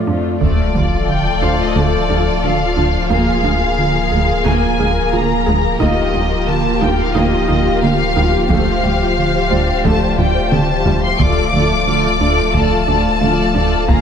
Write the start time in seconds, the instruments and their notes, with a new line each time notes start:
Already playing: analog synth pad F3 A3 F4 D5
0.07 cello section F2, viola section A3 F4, synth pluck D4
0.41 sub bass D1, analog synth bass D2, cello section D2, synth pluck D3, analog synth pad F3 A3 A4 F5, viola section A3 F4, violin section A4 D5, taiko, sub drop
0.75 cello section D2, analog synth bass D2, synth pluck F3, viola section G3
1.08 analog synth bass D3, violin section G5
1.42 analog synth bass D2, cello section D2, viola section F3, synth pluck D4, grand piano C5 C6, violin section F5, taiko
1.61 violin section D#5
1.76 cello section D2, analog synth bass D2, synth pluck D3, viola section A3, violin section D5
2.10 cello section D2, analog synth bass D2, viola section G3, synth pluck D4
2.43 cello section D2, analog synth bass D3, viola section A3, synth pluck A3, violin section F5
2.77 cello section D2, analog synth bass D2, viola section F3, synth pluck D4
3.10 analog synth bass D2, cello section D2, synth pluck A#3, analog synth pad A#3 G#4, viola section A#3, violin section G#4 A#4 F5
3.44 cello section D2, analog synth bass D2, viola section G#3, synth pluck D4
3.78 analog synth bass D3
4.12 cello section D2, analog synth bass D2, viola section G#3, synth pluck G#4
4.45 cello section D2, analog synth bass D2, viola section A#3, synth pluck A#3, violin section G#5
4.80 cello section D2, analog synth bass D2, viola section G#3, synth pluck G#4, grand piano A#4
5.13 cello section D2, analog synth bass D3, viola section A#3, synth pluck F4, violin section A#5
5.46 analog synth bass D2, cello section D2, viola section G#3, synth pluck G#4
5.80 sub bass D1, analog synth bass D2, cello section D2, analog synth pad F3 G4 F5, viola section A#3 F4, synth pluck D#4, grand piano F4 D#5, violin section G4 D#5, taiko
6.14 cello section D2, analog synth bass D2, synth pluck G3, viola section A#3
6.47 analog synth bass D3, violin section A5
6.81 cello section D2, analog synth bass D2, viola section G3, synth pluck D#4, violin section G5, taiko
6.98 violin section F5
7.15 cello section D2, analog synth bass D2, viola section A#3, synth pluck D#4, violin section D#5
7.47 cello section D2, analog synth bass D2, viola section A#3, synth pluck D#4, grand piano F5
7.82 cello section D2, analog synth bass D3, synth pluck A#3, viola section A#3, violin section F5
8.16 cello section D2, analog synth bass D2, viola section G3, synth pluck D#4
8.49 cello section D2, analog synth bass D2, synth pluck F3, analog synth pad A3, viola section A3, violin section C5 F5, taiko
8.84 cello section D2, analog synth bass D2, viola section G3, synth pluck A3
9.18 analog synth bass D3
9.50 cello section D2, analog synth bass D2, viola section G3, grand piano D4 D5, synth pluck F4
9.84 cello section D2, analog synth bass D2, synth pluck F3, viola section A3, violin section A5, taiko
10.18 cello section D2, analog synth bass D2, viola section G3, synth pluck F4, violin section G5, taiko low-mid
10.51 cello section D2, analog synth bass D3, viola section A3, synth pluck C4, violin section A5, taiko mid
10.86 analog synth bass D2, cello section D2, viola section G3, synth pluck F4, taiko low
11.04 violin section C6
11.19 sub bass D1, analog synth bass D2, cello section D2, synth pluck D3, analog synth pad F3 A4 F5, viola section A3 F4, violin section A4 D5 D6, taiko
11.53 analog synth bass D2, cello section D2, synth pluck F3, viola section A3 F4, violin section A4 D5
11.87 cello section D2, analog synth bass D3, viola section A3 F4, violin section A4 D5
12.21 analog synth bass D2, cello section D2, viola section A3 F4, synth pluck D4, violin section A4 D5
12.54 analog synth bass D2, cello section D2, synth pluck D3, viola section A3 F4, violin section A4 D5 A5, taiko
12.88 analog synth bass D2, cello section D2, viola section A3 F4, synth pluck D4, violin section A4 D5
13.21 cello section D2, analog synth bass D3, synth pluck A3, viola section A3 F4, violin section A4 D5
13.55 analog synth bass D2, cello section D2, viola section A3 F4, synth pluck D4, violin section A4 D5
13.88 analog synth bass D2, cello section D2, synth pluck A#3, analog synth pad A#3 G#4, viola section A#3 F4, violin section G#4 F5 A#5, taiko